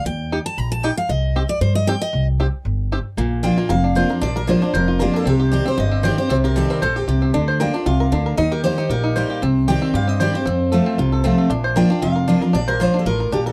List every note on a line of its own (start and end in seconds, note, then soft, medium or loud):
0.05 0.37 D#2 medium
0.05 0.43 G5 medium
0.32 0.38 D#4 medium
0.32 0.38 G4 medium
0.46 0.58 A5 medium
0.58 0.90 A#1 medium
0.58 0.71 A#5 loud
0.72 0.83 A5 loud
0.83 0.90 D#4 medium
0.83 0.90 G4 medium
0.83 0.97 G5 medium
0.97 1.09 F5 loud
1.09 1.41 C2 medium
1.09 1.47 D#5 medium
1.36 1.42 C4 medium
1.36 1.42 G4 medium
1.49 1.61 D5 loud
1.61 1.93 G2 medium
1.61 1.75 C5 medium
1.75 1.87 D#5 loud
1.87 1.94 C4 medium
1.87 1.94 G4 medium
1.87 2.01 G5 loud
2.02 2.26 D#5 medium
2.13 2.45 C2 loud
2.40 2.46 C4 medium
2.40 2.46 G4 medium
2.65 2.97 G1 medium
2.92 2.98 C4 medium
2.92 2.98 G4 medium
3.17 3.50 A#1 medium
3.17 3.68 A#2 medium
3.17 3.55 A#3 medium
3.43 3.57 F3 medium
3.43 3.57 A#3 loud
3.43 3.57 D4 medium
3.43 3.81 F4 medium
3.43 3.56 F4 medium
3.43 3.68 G5 loud
3.58 3.93 A#3 medium
3.58 3.70 D4 soft
3.58 3.69 F4 medium
3.69 4.02 F1 medium
3.69 4.19 F2 medium
3.69 4.07 A#4 medium
3.69 4.18 F5 loud
3.84 4.19 D4 medium
3.95 4.09 F3 medium
3.95 4.09 A#3 medium
3.95 4.10 D4 medium
3.95 4.08 F4 medium
3.95 4.33 C5 medium
4.09 4.22 D4 soft
4.09 4.21 F4 medium
4.09 4.35 A#4 medium
4.21 4.54 A#1 medium
4.21 4.71 A#2 medium
4.21 4.59 D4 medium
4.21 4.35 D5 loud
4.36 4.71 A#4 medium
4.36 4.48 A#4 medium
4.47 4.61 F3 medium
4.47 4.85 A#3 medium
4.47 4.61 A#3 medium
4.47 4.62 D4 medium
4.47 4.61 F4 medium
4.47 4.73 C5 medium
4.62 4.98 D4 medium
4.62 4.74 D4 soft
4.62 4.73 F4 medium
4.73 5.06 F1 medium
4.73 5.24 F2 medium
4.73 4.99 A#4 medium
4.73 5.11 C5 medium
4.88 5.24 F4 medium
4.99 5.25 F3 medium
4.99 5.25 A#3 medium
4.99 5.25 D4 medium
4.99 5.26 F4 medium
4.99 5.16 G4 medium
4.99 5.26 A#4 medium
5.14 5.25 D4 medium
5.14 5.29 A4 medium
5.26 5.58 C2 medium
5.26 5.76 C3 medium
5.26 5.63 C4 medium
5.26 5.53 G4 medium
5.40 5.50 G4 medium
5.52 5.65 D#3 medium
5.52 5.66 G3 medium
5.52 5.66 C4 medium
5.52 5.76 G4 medium
5.52 5.64 G4 loud
5.65 5.90 C4 medium
5.65 5.78 C4 soft
5.65 5.77 G4 medium
5.65 5.78 C5 medium
5.78 6.10 G1 medium
5.78 6.27 G2 medium
5.78 6.15 G4 medium
5.78 6.03 D#5 loud
5.92 6.27 C4 medium
6.03 6.17 D#3 medium
6.03 6.17 G3 medium
6.03 6.18 C4 medium
6.03 6.17 G4 loud
6.03 6.41 C5 medium
6.03 6.18 D5 loud
6.17 6.30 C4 medium
6.17 6.43 G4 medium
6.17 6.30 G4 medium
6.17 6.29 C5 medium
6.29 6.62 C2 medium
6.29 6.80 C3 loud
6.29 6.67 C4 medium
6.29 6.36 C5 loud
6.44 6.80 G4 medium
6.44 6.56 A#4 medium
6.56 6.81 D#3 medium
6.56 6.93 G3 medium
6.56 6.81 G3 medium
6.56 6.81 C4 medium
6.56 6.82 G4 loud
6.56 6.70 A4 medium
6.70 7.06 C4 medium
6.70 6.82 A#4 medium
6.82 7.04 A#1 medium
6.82 7.07 A#2 medium
6.82 6.96 A4 medium
6.82 7.19 C5 medium
6.96 7.06 G4 medium
6.96 7.22 G4 medium
7.07 7.30 C2 medium
7.07 7.33 C3 medium
7.07 7.34 G4 medium
7.22 7.33 C4 medium
7.34 7.66 D2 medium
7.34 7.59 D3 medium
7.34 7.71 D4 medium
7.48 7.84 C5 medium
7.60 7.73 D3 medium
7.60 7.74 A#3 medium
7.60 7.74 D4 medium
7.60 7.73 F4 loud
7.60 7.97 A#4 medium
7.60 7.86 G5 loud
7.74 8.10 D4 medium
7.74 7.87 D4 medium
7.74 7.86 F4 medium
7.86 8.08 C2 medium
7.86 8.11 C3 medium
7.86 8.23 F4 medium
7.86 8.37 F5 medium
8.00 8.25 A#4 medium
8.12 8.34 D2 medium
8.12 8.37 D3 medium
8.12 8.37 D4 medium
8.26 8.38 A#4 medium
8.37 8.70 D#2 loud
8.37 8.88 D#3 medium
8.37 8.75 D#4 medium
8.37 8.51 D#5 loud
8.52 8.63 G4 medium
8.52 8.63 A#4 medium
8.64 8.78 G3 medium
8.64 8.78 A#3 medium
8.64 8.78 D#4 medium
8.64 8.88 G4 medium
8.64 8.77 G4 loud
8.64 8.90 C5 medium
8.78 9.02 D#4 medium
8.78 8.91 D#4 soft
8.78 8.90 G4 medium
8.89 9.22 A#1 medium
8.89 9.40 A#2 medium
8.89 9.27 G4 medium
8.89 9.27 A#4 medium
9.03 9.39 D#4 medium
9.16 9.41 G3 medium
9.16 9.41 A#3 medium
9.16 9.42 D#4 medium
9.16 9.42 G4 medium
9.16 9.42 C5 medium
9.30 9.42 G4 medium
9.42 9.74 C2 medium
9.42 9.92 C3 medium
9.42 9.79 C4 medium
9.68 9.93 D#3 medium
9.68 9.94 G3 medium
9.68 9.94 C4 medium
9.68 9.92 G4 medium
9.68 9.94 G4 loud
9.68 9.95 G5 loud
9.82 10.06 C4 medium
9.94 10.26 G2 medium
9.94 10.44 G2 medium
9.94 10.31 G4 medium
9.94 10.09 F5 loud
10.07 10.43 C4 medium
10.07 10.20 D#5 loud
10.20 10.34 D#3 medium
10.20 10.34 G3 medium
10.20 10.34 C4 medium
10.20 10.33 G4 medium
10.20 10.46 C5 medium
10.20 10.33 D5 loud
10.34 10.47 C4 soft
10.34 10.46 G4 medium
10.34 11.35 C5 medium
10.46 10.78 F2 medium
10.46 10.96 F2 medium
10.46 10.83 C4 medium
10.72 10.97 F3 medium
10.72 10.97 A3 medium
10.72 10.98 C4 medium
10.72 10.98 F4 medium
10.72 11.09 A4 medium
10.86 11.22 C4 medium
10.98 11.30 C2 medium
10.98 11.48 C3 medium
10.98 12.01 F4 medium
11.12 11.37 A4 medium
11.24 11.49 F3 medium
11.24 11.49 A3 medium
11.24 11.49 C4 medium
11.24 11.50 C4 medium
11.24 11.50 F4 loud
11.38 11.50 A4 medium
11.50 11.82 A#1 medium
11.50 12.00 A#2 medium
11.50 11.87 D4 medium
11.64 12.00 C5 medium
11.76 11.89 F3 medium
11.76 11.90 A#3 medium
11.76 11.90 D4 medium
11.76 11.89 F4 medium
11.76 12.13 A#4 medium
11.76 12.01 G5 loud
11.90 12.26 D4 medium
11.90 12.03 D4 medium
11.90 12.02 F4 medium
12.02 12.34 F1 medium
12.02 12.52 F2 medium
12.02 12.39 F4 medium
12.02 12.55 F5 loud
12.16 12.40 A#4 medium
12.28 12.41 F3 medium
12.28 12.42 A#3 medium
12.28 12.52 D4 medium
12.28 12.42 D4 loud
12.28 12.41 F4 loud
12.41 12.55 D4 soft
12.41 12.54 F4 medium
12.41 12.77 A#4 medium
12.53 12.86 A#1 medium
12.53 13.04 A#2 medium
12.53 12.91 D4 medium
12.53 12.68 D5 loud
12.68 12.81 A#4 medium
12.68 13.04 C5 medium
12.80 13.05 F3 medium
12.80 13.05 A#3 medium
12.80 13.06 D4 loud
12.80 13.06 F4 medium
12.80 13.17 A#4 medium
12.80 12.99 C5 medium
12.94 13.30 D4 medium
12.99 13.06 A4 medium
13.05 13.28 A1 medium
13.05 13.31 A2 medium
13.05 13.43 F4 medium
13.05 13.30 A#4 medium
13.20 13.45 A#4 medium
13.32 13.52 A#1 medium
13.32 13.52 A#2 medium
13.32 13.52 D4 medium
13.32 13.46 G4 medium
13.46 13.52 A4 medium
13.46 13.52 A#4 medium